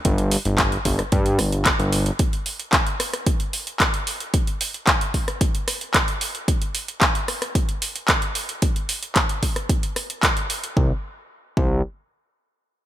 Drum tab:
HH |xxoxxxoxxxoxxxox|xxoxxxoxxxoxxxox|xxoxxxoxxxoxxxox|xxoxxxoxxxoxxxox|
CP |----x-------x---|----x-------x---|----x-------x---|----x-------x---|
SD |-------r--r-----|------rr--------|-------r--r-----|------rr--------|
BD |o---o-o-o---o---|o---o---o---o---|o---o-o-o---o---|o---o---o---o---|

HH |xxoxxxoxxxoxxxox|----------------|
CP |----x-------x---|----------------|
SD |-------r--r-----|----------------|
BD |o---o-o-o---o---|o-----o---------|